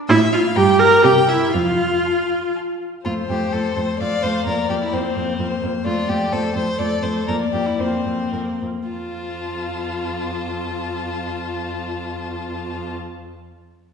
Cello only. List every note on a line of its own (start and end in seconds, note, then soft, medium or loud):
0.09 0.46 A2 medium
0.56 0.94 G2 medium
1.04 1.44 C3 medium
1.55 1.95 F2 medium
3.06 3.14 F2 soft
3.30 3.38 F2 soft
3.53 3.61 F2 soft
3.77 3.85 F2 soft
4.01 4.09 F2 soft
4.24 4.32 F2 soft
4.46 4.54 F2 soft
4.70 4.78 F2 soft
4.93 5.01 F2 soft
5.16 5.24 F2 soft
5.40 5.48 F2 soft
5.63 5.71 F2 soft
5.86 5.94 F2 medium
6.09 6.17 F2 soft
6.32 6.40 F2 soft
6.56 6.64 F2 soft
6.80 6.88 F2 soft
7.03 7.11 F2 soft
7.29 7.37 F2 soft
7.54 7.62 F2 soft
7.80 7.88 F2 soft
8.06 8.14 F2 soft
8.33 8.41 F2 soft
8.62 8.70 F2 soft
8.90 12.93 F2 soft